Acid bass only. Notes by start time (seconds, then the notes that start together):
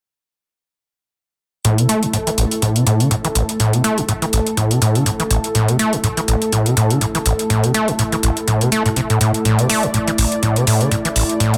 1.65 A2
1.78 C3
1.89 A3
2.03 A2
2.13 A2
2.27 E3
2.38 A1
2.62 A2
2.76 C3
2.87 A2
3.00 D3
3.11 A2
3.25 E3
3.35 A1
3.60 A2
3.73 C3
3.84 A3
3.98 A2
4.09 A2
4.22 E3
4.33 A1
4.57 A2
4.71 C3
4.82 A2
4.95 D3
5.06 A2
5.20 E3
5.31 A1
5.55 A2
5.68 C3
5.79 A3
5.93 A2
6.04 A2
6.17 E3
6.28 A1
6.53 A2
6.66 C3
6.77 A2
6.90 D3
7.01 A2
7.15 E3
7.26 A1
7.50 A2
7.64 C3
7.74 A3
7.88 A2
7.99 A2
8.12 E3
8.23 A1
8.48 A2
8.61 C3
8.72 A3
8.86 A2
8.96 C3
9.10 A2
9.21 A2
9.45 A2
9.59 C3
9.70 A3
9.83 A2
9.94 A2
10.08 E3
10.18 A1
10.43 A2
10.56 C3
10.67 A2
10.81 D3
10.92 A2
11.05 E3
11.16 A1
11.40 A2
11.54 C3